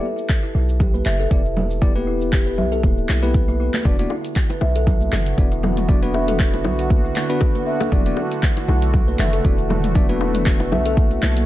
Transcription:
0.18 shaker
0.29 kick, clap, shaker
0.43 E4, shaker
0.55 B1 E4
0.69 shaker
0.80 G4, kick, low conga, shaker
0.94 B4, high conga, shaker
1.06 F#1 E5, clap
1.19 A4, shaker
1.31 E1 B3 E4 G4 D5, kick, shaker
1.45 shaker
1.57 high conga, low conga
1.71 shaker
1.82 B3 E4 G4 D5, kick, low conga, shaker
1.95 B3 E4 G4 B4, high conga, shaker
2.07 E4
2.21 shaker
2.32 G4, kick, clap, shaker
2.46 B4, shaker
2.58 B1 E5, low conga
2.72 A4, shaker
2.83 D1 E4, kick, high conga, shaker
2.98 shaker
3.09 B1, clap, high conga
3.23 B3 E4 G4 B4, high conga, shaker
3.34 kick, shaker
3.48 E4, high conga, shaker
3.60 E4
3.74 clap, high conga, shaker
3.85 E1 D3 B3 D4 F#4 D5, kick, low conga, shaker
3.99 B3 D4 E4 F#4 D5, closed hi-hat, high conga, shaker
4.10 E4, high bongo
4.25 closed hi-hat, shaker
4.36 F#4, kick, clap, shaker
4.50 B4, closed hi-hat, low bongo, shaker
4.61 B1 E5, high bongo, low bongo
4.76 A4, closed hi-hat, shaker
4.87 E4, kick, low conga, shaker
5.01 high conga, shaker
5.13 F#1, clap, mid tom, high bongo
5.26 closed hi-hat, shaker
5.38 E1 B3 D4 F#4 D5, kick, shaker
5.52 E4, closed hi-hat, shaker
5.63 E4, mid tom, high bongo, high conga, low conga
5.77 closed hi-hat, mid tom, shaker
5.89 B3 D4 F#4 D5, kick, low conga, shaker
6.02 B3 D4 F#4 B4, closed hi-hat, high conga, shaker
6.14 E5, high bongo
6.28 A4, closed hi-hat, mid tom, shaker
6.39 E4, kick, clap, mid tom, shaker
6.54 closed hi-hat, low bongo, shaker
6.64 B1, high bongo, low bongo, low conga
6.79 closed hi-hat, shaker
6.90 kick, high conga, shaker
7.04 E4, shaker
7.16 E4, clap, low bongo, high conga
7.30 B3 D4 F#4 B4, closed hi-hat, shaker
7.41 F#4, kick, high bongo, shaker
7.55 B4, closed hi-hat, high conga, shaker
7.66 E5
7.80 A4, closed hi-hat, high bongo, high conga, shaker
7.92 E1 A3 B3 D4 E4 F#4 D5, kick, low conga, shaker
8.06 B3 D4 F#4 D5, closed hi-hat, high conga, shaker
8.17 high bongo
8.32 closed hi-hat, shaker
8.43 kick, clap, shaker
8.57 E4, closed hi-hat, low bongo, shaker
8.68 B1 E4, high bongo, low bongo
8.82 closed hi-hat, shaker
8.93 F#4, kick, low conga, shaker
9.08 B4, high conga, shaker
9.19 F#1 E5, clap, mid tom, high bongo
9.33 A4, closed hi-hat, shaker
9.45 E1 B3 D4 E4 F#4 D5, kick, shaker
9.59 closed hi-hat, shaker
9.69 mid tom, high bongo, high conga, low conga
9.84 closed hi-hat, mid tom, shaker
9.95 B3 D4 F#4 D5, kick, low conga, shaker
10.09 B3 D4 E4 F#4 B4, closed hi-hat, high conga, shaker
10.21 E4, high bongo
10.35 closed hi-hat, mid tom, shaker
10.46 F#4, kick, clap, mid tom, shaker
10.60 B4, closed hi-hat, low bongo, shaker
10.72 B1 E5, high bongo, low bongo, low conga
10.86 A4, closed hi-hat, shaker
10.97 E4, kick, high conga, shaker
11.11 closed hi-hat, shaker
11.23 B1, clap, low bongo, high conga
11.37 closed hi-hat, high conga, shaker

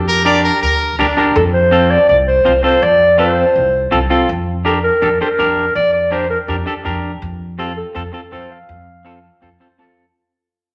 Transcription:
Already playing: F2 G4
0.08 A#4
0.25 D4 G4 A#4 D5
0.44 A#4
0.62 D2 A#4
0.99 D2 D4 G4 A#4
1.17 D4 G4 A#4
1.36 F2 A4
1.54 C5
1.71 C4 F4 A4
1.90 D5
2.09 C2 D5
2.28 C5
2.45 C2 C4 F4 C5
2.63 C4 F4 A4 C5
2.82 F2 D5
3.18 C4 F4 A4 C5
3.56 C2
3.91 C2 C4 F4 A4
4.10 C4 F4 A4
4.29 F2
4.65 D4 G4 A4 A#4
4.84 A#4
5.02 F2 D4 G4 A4
5.21 D4 G4 A#4 C5
5.39 F2 D4 G4 A#4
5.75 F2 D5
5.94 D5
6.11 D4 G4 A#4 C5
6.30 A#4
6.48 F2 D4 G4 A#4
6.66 D4 G4 A4
6.85 F2 D4 G4 A#4
7.22 F2
7.59 C4 F4 G4 A4
7.77 A4
7.95 F2 C4 F4 A4
8.13 C4 F4 A4
8.32 F2 C4 F4 A4 C5
8.51 F5
8.69 F2
9.05 C4 F4 A4
9.42 F2 C4 F4 A4
9.60 C4 F4 A4 C5
9.78 F2 C4 F4 A4 A5

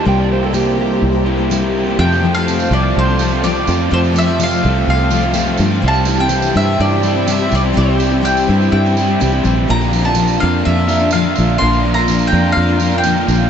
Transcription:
Already playing: G5
0.02 C2 C3 G3 E4 A#4 C5
0.07 A#3 E4 G4 G5
0.20 D5
0.33 C5
0.42 A#3 E4 G4 A4
0.52 C3 G3 A#3 E4 G4, tambourine
0.57 G4
0.77 G3 A#3 E4 G4
0.81 G4
1.02 C2
1.12 A#3 E4 G4
1.25 C3 G3 A#3 E4 G4
1.37 A#3 E4 G4
1.50 C3 G3 A#3 E4 G4, tambourine
1.62 A#3 E4 G4
1.86 A#3 E4 G4
1.96 F2 F4 A4 C5 G5 A5
2.01 F2 C3 F3 A3 C4 A4
2.12 tambourine
2.22 F3 A3 C4 F4 A4
2.35 F3 A3 C4 A4 F5, tambourine
2.48 F2 C3 F3 A3 C4 A4, tambourine
2.60 tambourine
2.71 C2 F3 A3 C4 F4 A4 D5, tambourine
2.97 C2 C5
3.08 F3 A3 C4 A4
3.18 F3 A3 C4 F4, tambourine
3.22 A4
3.31 F3 A3 C4 A4, tambourine
3.44 F2 C3 F3 A3 C4 F4 A4 D5, tambourine
3.55 F3 A3 C4 A4, tambourine
3.66 F2 F3 A3 C4 F4 A4, tambourine
3.90 F2 C3 F3 A3 C4 F4 A4 C5 G5
4.04 tambourine
4.13 F3 A3 C4 F4 A4, tambourine
4.18 E5
4.27 F3 A3 C4 A4
4.38 F2 C3 F3 A3 C4 A4, tambourine
4.43 F5
4.51 tambourine
4.61 C2 F3 A3 F4, tambourine
4.65 C4 A4
4.88 C2 F5
5.00 F3 A3 C4 A4
5.10 F3 A3 C4 F4 A4, tambourine
5.23 F3 A3 C4 A4, tambourine
5.34 F2 C3 F3 A3 C4 F4 A4, tambourine
5.47 F3 A3 C4 A4, tambourine
5.57 G2 F3 A3 C4 F4 A4, tambourine
5.71 F3 A3 C4 A4
5.80 C2 C3 E3 G3 C4 E4 G4
5.88 A5
5.94 tambourine
6.05 G3 C4 E4, tambourine
6.09 G4
6.17 C4 E4 G4 G5, tambourine
6.28 C3 G3 C4 E4 G4, tambourine
6.42 tambourine
6.55 G2 G3 C4 E4 G4 E5, tambourine
6.80 G2 D5
6.91 C4 E4 G4
7.03 G3 C4 E4 G4, tambourine
7.14 C4 E4 G4
7.27 C3 E3 G3 C4 E4 G4 E5, tambourine
7.39 C4 E4 G4, tambourine
7.49 C2 G3 C4 E4 G4, tambourine
7.54 G3 D5
7.61 C4 E4 G4
7.73 C3 G3 C4 E4 G4, tambourine
7.77 C2 E3 G3 C4 E4 C5
7.98 G3 C4 E4 G4, tambourine
8.03 G3
8.09 C4 E4 G4
8.21 C3 G3 C4 E4 G4 G5, tambourine
8.37 tambourine
8.47 G2 G3 C4 E4 G4, tambourine
8.52 G3
8.62 tambourine
8.72 G2 G5
8.85 C4 E4 G4, tambourine
8.96 G3 C4 E4 G4, tambourine
9.08 C4 E4 G4
9.20 C2 C3 E3 G3 C4 E4 G4, tambourine
9.30 C4 E4 G4
9.43 A#1 G3 C4 E4 G4, tambourine
9.48 G3
9.55 C4 E4 G4
9.65 A#2 F3 A#3 F4 A#4 D5
9.69 A#1 D3 D4 F4 A#5
9.81 tambourine
9.92 F3 A#3 D4 F4, tambourine
10.05 A#3 D4 F4 A5, tambourine
10.14 A#2 F3 A#3 D4 F4, tambourine
10.27 tambourine
10.39 F2 F3 A#3 D4 F4 F5, tambourine
10.65 F2 E5
10.77 A#3 D4 F4
10.89 F3 A#3 D4 F4, tambourine
11.00 A#3 D4 F4, tambourine
11.11 A#2 D3 F3 A#3 D4 F5, tambourine
11.15 F4
11.23 A#3 D4 F4, tambourine
11.36 A#1 F3 A#3 D4 F4, tambourine
11.40 F4
11.58 A#1 A#2 D3 F3 A#3 D4 F4 A#5 C6
11.73 tambourine
11.85 F3 A#3 D4 F4
11.94 A#3 D4 F4 A#5, tambourine
12.08 A#2 F3 A#3 D4 F4, tambourine
12.19 tambourine
12.27 G5
12.32 F2 F3 A#3 D4 F4, tambourine
12.52 F5
12.57 F2
12.67 A#3 D4 F4
12.78 F3 A#3 D4 F4, tambourine
12.82 F4
12.92 A#3 D4 F4, tambourine
12.98 G5
13.04 A#2 D3 F3 A#3 D4 F4, tambourine
13.16 A#3 D4 F4, tambourine
13.28 A#1 F3 A#3 D4 F4, tambourine
13.41 A#3 D4 F4

